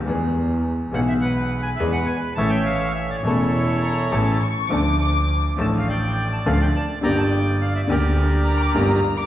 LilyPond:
<<
  \new Staff \with { instrumentName = "Violin section" } { \time 4/4 \key d \minor \tempo 4 = 104 r1 | r2 r8 bes''8 a''8 cis'''8 | d'''8 d'''8. r2 r8. | r2 r8 bes''16 d'''16 bes''8. d'''16 | }
  \new Staff \with { instrumentName = "Bandoneon" } { \time 4/4 \key d \minor << { r4. fis''16 e''16 fis''8. gis''16 e''16 fis''16 gis''8 | a''16 g''16 f''8 e''16 d''16 cis''2 r8 | r4. a''16 f''16 g''8. a''16 f''16 g''16 a''8 | bes''16 a''16 g''8 f''16 e''16 d''2 r8 | } \\ { r2 b'2 | <cis'' e''>4. <e' a'>2 r8 | r2 d''2 | <d'' g''>4. <g' bes'>2 r8 | } >> }
  \new Staff \with { instrumentName = "Upright piano" } { \clef bass \time 4/4 \key d \minor <e, e gis b gis'>4. <b,, b, e gis b gis'>4. <e, e gis b gis'>8 r8 | <a,, a, e a cis' a'>4. <e,, e, e a cis' a'>4. <a,, a, e a cis' a'>8 r8 | <d, d f a d' a'>4. <a,, a, f a d' a'>4. <d, d f a d' a'>8 r8 | <g,, g, d g bes g'>4. <d, d g bes g'>4. <g,, g, d g bes g'>8 r8 | }
  \new Staff \with { instrumentName = "Double bass" } { \clef bass \time 4/4 \key d \minor e,4. b,,4. e,8 r8 | a,,4. e,,4. a,,8 r8 | d,4. a,,4. d,8 r8 | g,,4. d,4. g,,8 r8 | }
>>